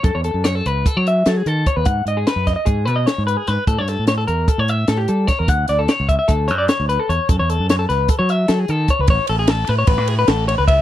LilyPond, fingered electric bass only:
\new Staff \with { instrumentName = "Fingered electric bass" } { \clef bass \time 9/8 \key a \lydian \tempo 4. = 99 fis,16 e,8 fis,8. cis,8 r16 fis8. fis8 dis8 r16 dis,16 | gis,8 gis,8 r16 fis,8 r16 gis,8 b,8 r16 gis,8 r16 gis,16 r16 | a,16 g,8 a,8. e,8 r16 a,8. a,8 g8 r16 e,16 | d,8 d,8 r16 cis,8 r16 d,8 fis,8 r16 d,8 r16 e,16 r16 |
fis,16 e,8 fis,8. cis,8 r16 fis8. fis8 dis8 r16 cis,16 | a,,16 r16 a,,4 a,8 a,,16 a,8. a,,8. cis,8. | }